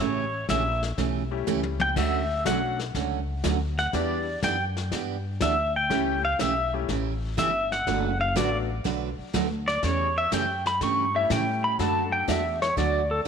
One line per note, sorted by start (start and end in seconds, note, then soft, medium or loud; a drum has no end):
0.00 0.47 A1 medium
0.00 0.23 C#3 medium
0.00 0.24 E3 medium
0.00 0.24 A3 medium
0.00 0.24 C#4 medium
0.00 0.24 G4 medium
0.00 0.46 C#5 medium
0.49 0.97 A#1 medium
0.49 0.62 C#3 medium
0.49 0.62 E3 medium
0.49 0.62 A3 medium
0.49 0.62 C#4 medium
0.49 0.62 G4 medium
0.49 0.82 E5 medium
0.49 kick soft
0.49 snare medium
0.49 hi-hat pedal medium
0.83 snare soft
0.97 1.46 B1 medium
0.97 1.21 C#3 soft
0.97 1.22 E3 medium
0.97 1.22 A3 medium
0.97 1.22 C#4 medium
0.97 1.22 G4 medium
0.97 brush sweep soft
0.97 kick soft
0.97 snare soft
1.31 1.93 G3 medium
1.31 1.93 A3 medium
1.31 1.93 C#4 medium
1.31 1.93 E4 medium
1.31 1.93 G4 medium
1.47 1.95 C#2 medium
1.47 1.60 C#3 medium
1.47 1.60 E3 medium
1.47 1.60 A3 medium
1.47 1.60 C#4 medium
1.47 1.60 G4 medium
1.47 hi-hat pedal medium
1.47 high tom soft
1.63 high tom medium
1.80 1.96 G5 medium
1.80 high tom medium
1.96 2.44 D2 medium
1.96 2.20 D3 medium
1.96 2.20 F#3 medium
1.96 2.20 A3 medium
1.96 2.20 C#4 medium
1.96 2.20 F#4 medium
1.96 2.43 E5 medium
1.96 brush sweep medium
1.96 kick medium
1.96 snare soft
1.96 crash medium
2.45 2.93 B1 medium
2.45 2.58 D3 medium
2.45 2.76 F#3 medium
2.45 2.59 F#3 medium
2.45 2.76 A3 medium
2.45 2.59 A3 medium
2.45 2.76 C#4 medium
2.45 2.59 C#4 medium
2.45 2.76 D4 medium
2.45 2.76 F#4 medium
2.45 2.59 F#4 medium
2.45 2.79 F#5 medium
2.45 kick soft
2.45 snare medium
2.45 hi-hat pedal medium
2.79 snare soft
2.95 3.43 C#2 medium
2.95 3.19 D3 medium
2.95 3.19 F#3 medium
2.95 3.19 A3 medium
2.95 3.19 C#4 medium
2.95 3.19 F#4 medium
2.95 brush sweep soft
2.95 kick soft
2.95 snare soft
3.44 3.92 D2 medium
3.44 3.56 D3 medium
3.44 3.56 F#3 medium
3.44 3.57 A3 medium
3.44 3.57 C#4 medium
3.44 3.57 F#4 medium
3.44 kick soft
3.44 snare medium
3.44 hi-hat pedal medium
3.78 3.93 F#5 medium
3.78 snare soft
3.93 4.41 E2 medium
3.93 4.17 E3 medium
3.93 4.24 G3 medium
3.93 4.24 B3 medium
3.93 4.17 B3 medium
3.93 4.24 D4 medium
3.93 4.17 D4 medium
3.93 4.24 E4 medium
3.93 4.24 G4 medium
3.93 4.17 G4 medium
3.93 4.40 D5 medium
3.93 brush sweep soft
3.93 kick soft
3.93 snare soft
4.42 4.90 F#2 medium
4.42 4.55 E3 medium
4.42 4.55 B3 medium
4.42 4.55 D4 medium
4.42 4.56 G4 medium
4.42 4.64 G5 medium
4.42 kick soft
4.42 snare medium
4.42 hi-hat pedal medium
4.77 snare soft
4.92 5.40 G2 medium
4.92 5.15 E3 medium
4.92 5.15 B3 medium
4.92 5.16 D4 medium
4.92 5.16 G4 medium
4.92 brush sweep soft
4.92 kick soft
4.92 snare soft
5.40 5.89 D2 medium
5.40 5.54 E3 medium
5.40 5.54 B3 medium
5.40 5.54 D4 medium
5.40 5.54 G4 medium
5.40 5.75 E5 medium
5.40 kick soft
5.40 snare medium
5.40 hi-hat pedal medium
5.76 6.21 G5 loud
5.90 6.38 C#2 medium
5.90 6.14 C#3 medium
5.90 6.14 E3 medium
5.90 6.20 G3 medium
5.90 6.21 A3 medium
5.90 6.14 A3 medium
5.90 6.20 C#4 medium
5.90 6.14 C#4 medium
5.90 6.21 E4 medium
5.90 6.21 G4 medium
5.90 6.14 G4 medium
5.90 brush sweep soft
5.90 kick soft
5.90 snare soft
6.25 6.39 F5 medium
6.39 6.87 B1 loud
6.39 6.52 C#3 medium
6.39 6.52 E3 medium
6.39 6.52 A3 medium
6.39 6.52 C#4 medium
6.39 6.53 G4 medium
6.39 6.73 E5 medium
6.39 kick soft
6.39 snare medium
6.39 hi-hat pedal medium
6.73 6.87 G3 medium
6.73 6.87 A3 medium
6.73 6.87 C#4 medium
6.73 6.87 E4 medium
6.73 6.87 G4 medium
6.88 7.36 A1 medium
6.88 7.12 C#3 medium
6.88 7.12 E3 medium
6.88 7.12 A3 medium
6.88 7.13 C#4 medium
6.88 7.13 G4 medium
6.88 brush sweep medium
6.88 kick soft
6.88 snare soft
7.37 7.85 G1 medium
7.37 7.50 C#3 medium
7.37 7.50 E3 medium
7.37 7.50 A3 medium
7.37 7.50 C#4 medium
7.37 7.50 G4 medium
7.37 7.71 E5 medium
7.37 kick soft
7.37 snare medium
7.37 hi-hat pedal medium
7.72 8.18 F#5 medium
7.72 snare soft
7.87 8.34 F#1 medium
7.87 8.10 D3 medium
7.87 8.10 F#3 medium
7.87 8.11 A3 medium
7.87 8.11 D4 medium
7.87 8.11 F#4 medium
7.87 8.11 B4 medium
7.87 brush sweep soft
7.87 kick soft
7.87 snare soft
8.21 8.35 F5 medium
8.36 8.84 A1 medium
8.36 8.48 D3 medium
8.36 8.48 F#3 medium
8.36 8.66 F#3 medium
8.36 8.48 A3 medium
8.36 8.67 A3 medium
8.36 8.67 B3 medium
8.36 8.48 D4 medium
8.36 8.67 D4 medium
8.36 8.49 F#4 medium
8.36 8.67 F#4 medium
8.36 8.49 B4 medium
8.36 8.57 D5 medium
8.36 kick soft
8.36 snare medium
8.36 hi-hat pedal medium
8.84 9.16 B1 medium
8.84 9.08 D3 medium
8.84 9.08 F#3 medium
8.84 9.08 A3 medium
8.84 9.08 D4 medium
8.84 9.08 F#4 medium
8.84 9.08 B4 medium
8.84 brush sweep medium
8.84 kick soft
8.84 snare soft
9.18 muted upright bass stroke soft
9.33 9.81 D2 medium
9.33 9.46 D3 medium
9.33 9.46 F#3 medium
9.33 9.47 A3 medium
9.33 9.46 D4 medium
9.33 9.47 F#4 medium
9.33 9.47 B4 medium
9.33 kick soft
9.33 snare medium
9.33 hi-hat pedal soft
9.68 9.82 D5 medium
9.68 snare soft
9.83 10.30 E2 medium
9.83 10.06 C#3 medium
9.83 10.06 E3 medium
9.83 10.07 A3 medium
9.83 10.07 C#4 medium
9.83 10.07 G4 medium
9.83 10.16 C#5 medium
9.83 brush sweep soft
9.83 kick soft
9.83 snare soft
10.18 10.32 E5 medium
10.32 10.80 F#2 medium
10.32 10.44 C#3 medium
10.32 10.44 E3 medium
10.32 10.45 A3 medium
10.32 10.45 C#4 medium
10.32 10.45 G4 medium
10.32 10.66 G5 medium
10.32 kick soft
10.32 snare medium
10.32 hi-hat pedal medium
10.66 10.81 B5 loud
10.66 snare soft
10.81 11.28 G2 medium
10.81 11.04 C#3 medium
10.81 11.04 E3 medium
10.81 11.05 A3 medium
10.81 11.05 C#4 medium
10.81 11.05 G4 medium
10.81 11.15 C#6 loud
10.81 brush sweep medium
10.81 kick soft
10.81 snare soft
11.14 11.76 G3 medium
11.14 11.75 A3 medium
11.14 11.76 C#4 medium
11.14 11.76 E4 medium
11.14 11.76 G4 medium
11.14 11.30 E5 medium
11.30 11.77 A2 medium
11.30 11.42 C#3 medium
11.30 11.43 E3 medium
11.30 11.43 A3 medium
11.30 11.43 C#4 medium
11.30 11.43 G4 medium
11.30 11.64 G5 medium
11.30 kick soft
11.30 snare medium
11.30 hi-hat pedal medium
11.64 11.79 B5 loud
11.79 12.26 F#2 medium
11.79 12.02 D3 medium
11.79 12.55 F#3 medium
11.79 12.02 F#3 medium
11.79 12.55 A3 medium
11.79 12.03 A3 medium
11.79 12.55 D4 medium
11.79 12.03 D4 medium
11.79 12.55 F#4 medium
11.79 12.03 F#4 medium
11.79 12.55 A4 medium
11.79 12.12 A5 medium
11.79 brush sweep soft
11.79 kick soft
11.79 snare soft
12.12 12.27 G5 medium
12.28 12.75 E2 medium
12.28 12.40 D3 medium
12.28 12.40 F#3 medium
12.28 12.40 A3 medium
12.28 12.40 D4 medium
12.28 12.41 F#4 medium
12.28 12.61 E5 medium
12.28 kick soft
12.28 snare medium
12.28 hi-hat pedal medium
12.62 12.76 C#5 medium
12.62 snare soft
12.77 13.24 D2 medium
12.77 13.00 D3 medium
12.77 13.00 F#3 medium
12.77 13.00 A3 medium
12.77 13.00 D4 medium
12.77 13.01 F#4 medium
12.77 13.10 D5 medium
12.77 brush sweep soft
12.77 kick soft
12.77 snare soft
13.11 13.20 A4 loud